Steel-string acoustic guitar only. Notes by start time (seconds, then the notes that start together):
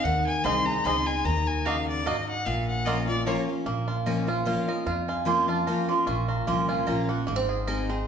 0.05 D#3
0.44 G#3 C4 D#4 G#4
0.66 D#4 G#4
0.84 G#3 C4 D#4 G#4
1.06 D#4 G#4
1.25 D#3
1.66 C#3
2.07 G#2
2.46 A#2
2.86 F3 A#3 C#4 F4
3.07 C#4 F4
3.26 F3 A#3 C#4 F4
3.48 C#4 F4
3.66 A#2
4.06 F3 A#3 C#4 F4
4.27 C#4 F4
4.45 F3 A#3 C#4 F4
4.68 C#4 F4
4.87 F2
5.25 F3 A#3 C#4 F4
5.48 C#4 F4
5.67 F3 A#3 C#4 F4
5.89 C#4 F4
6.07 A#2
6.47 F3 A#3 C#4 F4
6.87 F3 A#3 C#4 F4
7.09 F4
7.28 G#2
7.67 G#3 C4 D#4 G#4
7.89 D#4 G#4